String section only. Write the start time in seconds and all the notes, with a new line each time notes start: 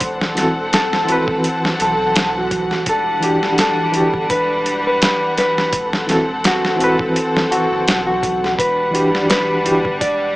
Already playing: E3 F#5
0.01 C4 A4
2.88 G3 D4
5.73 C4 A4
8.57 G3 D4 F#5